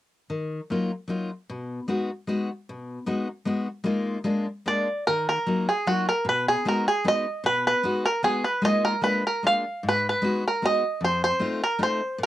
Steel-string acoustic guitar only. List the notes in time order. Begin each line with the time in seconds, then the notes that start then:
0.30 D#3
0.70 F#3 A#3 D#4 F4
1.08 F#3 A#3 D#4 F4
1.50 B2
1.88 G#3 B3 D#4 F#4
2.27 G#3 B3 D#4 F#4
2.69 B2
3.06 G#3 B3 D#4 F#4
3.45 G#3 B3 D#4 F#4
3.84 G#3 A#3 D#4 F4
4.24 G#3 A#3 D4 F4
4.66 G#3 A#3 D4 F4
5.08 D#3
5.46 F#3 A#3 D#4 F4
5.87 F#3 A#3 D#4 F4
6.25 B2
6.65 G#3 B3 D#4 F#4
7.04 G#3 B3 D#4 F#4
7.44 B2
7.83 G#3 B3 D#4 F#4
8.23 G#3 B3 D#4 F#4
8.62 G#3 A#3 D#4 F4
9.01 G#3 A#3 D4 F4
9.43 G#3 A#3 D4 F4
9.83 G#2
10.22 G#3 B3 D#4 F#4
10.62 G#3 B3 D#4 F#4
11.01 F2
11.40 A3 C4 D#4 F4
11.79 A3 C4 D#4 F4
12.18 A#2